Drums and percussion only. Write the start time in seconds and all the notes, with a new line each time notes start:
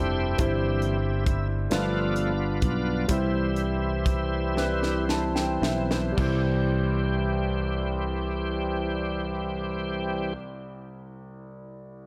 0.38 kick, closed hi-hat
0.82 closed hi-hat
1.26 kick, closed hi-hat
1.71 snare, closed hi-hat
2.16 closed hi-hat
2.62 kick, closed hi-hat
3.09 kick, closed hi-hat
3.56 closed hi-hat
4.06 kick, closed hi-hat
4.57 snare
4.83 snare
5.09 snare
5.36 snare
5.63 snare
5.91 snare
6.18 kick, crash